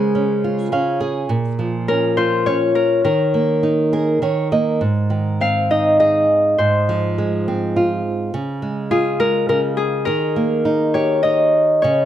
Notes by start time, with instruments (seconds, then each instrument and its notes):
Already playing: nylon-string guitar C#3 G#3, harp G#4 A#4 C5
0.15 nylon-string guitar C#4
0.44 nylon-string guitar F4
0.72 nylon-string guitar C#4 F5
1.00 nylon-string guitar G#4
1.29 nylon-string guitar A#2
1.59 nylon-string guitar F3
1.88 nylon-string guitar C#4, harp A#4
2.17 nylon-string guitar F4, harp C5
2.46 nylon-string guitar C#4, harp C#5
2.75 harp A#4
3.04 nylon-string guitar D#3, harp A#4
3.34 nylon-string guitar A#3
3.63 nylon-string guitar D#4
3.93 nylon-string guitar G#4 A#4
4.22 nylon-string guitar D#3 C#5
4.52 nylon-string guitar A#3 D#5
4.81 nylon-string guitar G#2
5.10 nylon-string guitar D#3
5.41 nylon-string guitar C4, harp F5
5.71 nylon-string guitar D#4, harp D#5
6.00 nylon-string guitar G#4, harp D#5
6.58 nylon-string guitar G#2, harp C5
6.89 nylon-string guitar F3
7.18 nylon-string guitar G#3
7.48 nylon-string guitar C4
7.76 nylon-string guitar F4
8.34 nylon-string guitar C#3
8.62 nylon-string guitar G#3
8.91 nylon-string guitar F4, harp G#4
9.20 nylon-string guitar G#3, harp A#4
9.49 nylon-string guitar C#3, harp A#4
9.77 harp G#4
10.05 nylon-string guitar D#3, harp A#4
10.36 nylon-string guitar A#3
10.65 nylon-string guitar D#4
10.94 nylon-string guitar G4, harp C#5
11.23 nylon-string guitar D#4, harp D#5
11.82 nylon-string guitar C#3, harp C#5